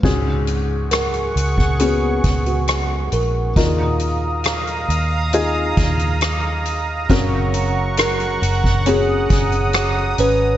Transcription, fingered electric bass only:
X:1
M:4/4
L:1/8
Q:1/4=68
K:C#mix
V:1 name="Fingered electric bass" clef=bass
C,,3 C,,2 C,,2 A,,, | D,,3 D,,2 D,,3 | F,,,3 F,,,2 F,,,2 G,,, |]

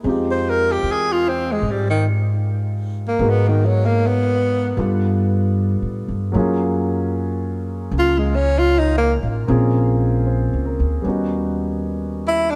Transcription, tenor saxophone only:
X:1
M:4/4
L:1/16
Q:"Swing" 1/4=76
K:Fm
V:1 name="Tenor saxophone"
z c B G A F C A, G, E, z4 z B, | _C E, _G, B, C4 z8 | z8 F A, D F E B, z2 | z12 z2 =E =D |]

